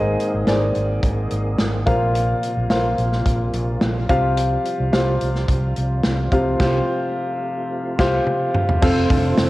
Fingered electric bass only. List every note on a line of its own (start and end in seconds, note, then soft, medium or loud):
0.00 0.15 G#1 medium
0.34 0.45 G#1 medium
0.48 0.70 G#1 medium
0.76 0.99 G#1 medium
1.03 1.26 G#1 medium
1.32 1.54 G#1 medium
1.60 1.82 G#1 medium
1.87 2.32 A#1 medium
2.57 2.68 A#1 medium
2.70 2.93 A#1 medium
2.98 3.21 A#1 medium
3.26 3.49 A#1 medium
3.54 3.76 A#1 medium
3.82 4.05 A#1 medium
4.09 4.55 C2 medium
4.80 4.91 C2 medium
4.94 5.16 C2 loud
5.22 5.44 C2 medium
5.49 5.71 C2 medium
5.78 6.00 C2 medium
6.05 6.28 C2 medium
6.32 6.55 C2 medium
6.60 6.79 C2 medium
7.99 8.18 C2 medium
8.83 9.05 F1 medium
9.10 9.33 F1 loud
9.38 9.50 F1 loud